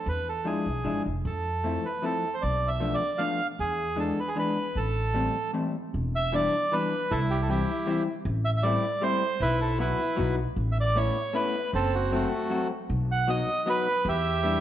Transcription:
0.06 upright bass E2, bandoneon B4
0.29 bandoneon A4
0.45 hollow-body jazz guitar F3 G#3 D4 E4, bandoneon G#4
0.66 upright bass B1
0.84 upright bass G#1, hollow-body jazz guitar F3 G#3 D4 E4
1.06 upright bass F1
1.25 upright bass F2, bandoneon A4
1.64 hollow-body jazz guitar F3 A3 C4 E4
1.85 bandoneon B4
2.02 hollow-body jazz guitar F3 A3 C4 E4, bandoneon A4
2.34 bandoneon C5
2.42 upright bass B1, bandoneon D5
2.68 bandoneon E5
2.80 hollow-body jazz guitar F3 A3 B3 D4
2.94 bandoneon D5
3.18 hollow-body jazz guitar F3 A3 B3 D4, bandoneon F5
3.59 upright bass E2, bandoneon G#4
3.96 hollow-body jazz guitar E3 G#3 B3 D4, bandoneon A4
4.20 bandoneon B4
4.28 bandoneon G#4
4.35 hollow-body jazz guitar E3 G#3 B3 D4, bandoneon B4
4.75 upright bass A1, bandoneon A4
5.14 hollow-body jazz guitar E3 G3 A3 C4
5.53 hollow-body jazz guitar E3 G3 A3 C4
5.94 upright bass E1
6.16 bandoneon E5
6.32 hollow-body jazz guitar E3 G3 B3 D4, bandoneon D5
6.72 hollow-body jazz guitar E3 G3 B3 D4, bandoneon B4
7.11 upright bass C2, bandoneon E4 A4
7.30 bandoneon G4
7.42 bandoneon A4
7.49 hollow-body jazz guitar E3 G3 C4 E4, bandoneon E4 G4
7.86 hollow-body jazz guitar E3 G3 C4 E4
8.25 upright bass A1
8.45 bandoneon E5
8.57 bandoneon E5
8.63 hollow-body jazz guitar G3 A3 C4 E4, bandoneon D5
9.02 hollow-body jazz guitar G3 A3 C4 E4, bandoneon C5
9.40 upright bass B1, bandoneon E4 B4
9.61 bandoneon A4
9.79 hollow-body jazz guitar F#3 B3 E4 F#4, bandoneon E4 B4
10.16 upright bass B1, hollow-body jazz guitar F#3 B3 D#4 F#4
10.56 upright bass A1
10.72 bandoneon E5
10.80 bandoneon D5
10.95 hollow-body jazz guitar A3 B3 C#4 E4, bandoneon C#5
11.33 hollow-body jazz guitar A3 B3 C#4 E4, bandoneon B4
11.73 upright bass F#1, bandoneon C4 A4
11.95 bandoneon F#4
12.12 hollow-body jazz guitar F#3 A3 C4 F#4, bandoneon A3 F#4
12.50 hollow-body jazz guitar F#3 A3 C4 F#4
12.90 upright bass B1
13.12 bandoneon F#5
13.27 hollow-body jazz guitar F#3 B3 D#4 F#4, bandoneon D#5
13.66 hollow-body jazz guitar F#3 B3 D#4 F#4, bandoneon B4
14.05 upright bass E2, bandoneon G4 E5
14.43 hollow-body jazz guitar G3 B3 D4 E4

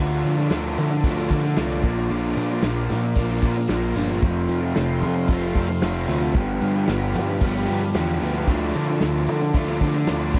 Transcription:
Already playing: overdriven electric guitar D3 A3 D4
0.00 picked electric bass D2, overdriven electric guitar F4, analog synth pad A4 D5 F5 D6
0.24 picked electric bass D3, overdriven electric guitar F3, open hi-hat
0.36 overdriven electric guitar A3 D4 F4
0.49 picked electric bass D2, overdriven electric guitar D3 A3 D4 F4, snare, open hi-hat
0.77 picked electric bass D3, overdriven electric guitar F3, open hi-hat
0.91 muted overdriven electric guitar stroke
1.03 picked electric bass D2, overdriven electric guitar D3 A3 D4 F4, kick, open hi-hat
1.17 overdriven electric guitar A3 D4 F4
1.30 overdriven electric guitar D3 F3 A3 D4 F4, picked electric bass D3, kick, open hi-hat
1.44 muted overdriven electric guitar stroke
1.56 picked electric bass C2, overdriven electric guitar D3 A3 D4 F4, snare, open hi-hat
1.83 picked electric bass A#1, overdriven electric guitar A#2 D3 A#3 D4 F4, analog synth pad A#4, kick, open hi-hat
1.97 overdriven electric guitar A#3 D4 F4
2.10 picked electric bass A#1, overdriven electric guitar A#2 D3 A#3 D4 F4, open hi-hat
2.36 picked electric bass A#2, overdriven electric guitar F3, open hi-hat
2.50 overdriven electric guitar A#3 D4 F4
2.62 picked electric bass A#1, overdriven electric guitar A#2 D3 A#3 D4 F4, snare, open hi-hat
2.89 picked electric bass A#2, overdriven electric guitar F3, open hi-hat
3.03 muted overdriven electric guitar stroke
3.16 picked electric bass A#1, overdriven electric guitar D3 A#3 D4 F4, kick, open hi-hat
3.30 overdriven electric guitar A#3 D4 F4
3.41 picked electric bass A#2, overdriven electric guitar D3 F3 A#3 D4, kick, open hi-hat
3.45 overdriven electric guitar F4
3.57 muted overdriven electric guitar stroke
3.69 picked electric bass A#1, overdriven electric guitar A#2 D3 A#3 D4 F4, snare, open hi-hat
3.95 picked electric bass G1, overdriven electric guitar D3 F3 A#3 D4 F4, open hi-hat
4.09 overdriven electric guitar A#3 D4 F4
4.22 picked electric bass F1, overdriven electric guitar F2 C3 F3 A3 C4 F4, analog synth pad A4 C5 C6, kick, open hi-hat
4.49 picked electric bass F2, overdriven electric guitar C3, open hi-hat
4.61 overdriven electric guitar F3 A3 C4 F4
4.75 picked electric bass F1, overdriven electric guitar F2 C3 F3 A3 C4 F4, snare, open hi-hat
5.02 picked electric bass F2, overdriven electric guitar F3, open hi-hat
5.16 muted overdriven electric guitar stroke
5.28 picked electric bass F1, overdriven electric guitar F3 A3 C4 F4, kick, open hi-hat
5.42 overdriven electric guitar F3 A3 C4 F4
5.54 picked electric bass F2, overdriven electric guitar F3 A3 C4 F4, kick, open hi-hat
5.68 muted overdriven electric guitar stroke
5.81 picked electric bass F1, overdriven electric guitar F2 C3 F3 A3 C4 F4, snare, open hi-hat
6.08 picked electric bass D2, overdriven electric guitar F3 A3 C4 F4, open hi-hat
6.21 overdriven electric guitar F3 A3 C4 F4
6.34 picked electric bass G1, overdriven electric guitar G2 D3 F3 G3 B3 G4, analog synth pad G4 D5 B5, kick, open hi-hat
6.61 picked electric bass G2, overdriven electric guitar D3, open hi-hat
6.75 overdriven electric guitar F3 G3 B3 G4
6.88 picked electric bass G1, overdriven electric guitar G2 D3 F3 G3 B3 G4, snare, open hi-hat
7.14 picked electric bass G2, overdriven electric guitar F3, open hi-hat
7.29 muted overdriven electric guitar stroke
7.41 picked electric bass G1, overdriven electric guitar F3 G3 B3 G4, kick, open hi-hat
7.54 overdriven electric guitar F3 G3 B3 G4
7.67 picked electric bass G2, overdriven electric guitar F3 G3 B3 G4, open hi-hat
7.81 muted overdriven electric guitar stroke
7.94 picked electric bass E2, overdriven electric guitar G2 D3 F3 G3 B3 G4, snare, open hi-hat
8.21 picked electric bass D2, overdriven electric guitar F3 G3 B3 G4, open hi-hat
8.34 overdriven electric guitar F3 G3 B3 G4
8.47 picked electric bass D2, overdriven electric guitar D3 A3 D4 F4, analog synth pad A4 D6, kick, crash
8.74 picked electric bass D3, overdriven electric guitar F3, open hi-hat
8.88 overdriven electric guitar A3 D4 F4
9.01 picked electric bass D2, overdriven electric guitar D3 A3 D4 F4, snare, open hi-hat
9.27 picked electric bass D3, overdriven electric guitar F3, open hi-hat
9.41 muted overdriven electric guitar stroke
9.54 picked electric bass D2, overdriven electric guitar D3 A3 D4 F4, kick, open hi-hat
9.67 overdriven electric guitar A3 D4 F4
9.81 overdriven electric guitar D3 F3 A3 D4 F4, picked electric bass D3, kick, open hi-hat
9.95 muted overdriven electric guitar stroke
10.07 picked electric bass D2, overdriven electric guitar D3 A3 D4 F4, snare, open hi-hat
10.34 picked electric bass A#1, overdriven electric guitar A#2 D3 A#3, analog synth pad A#4 F5, kick, crash

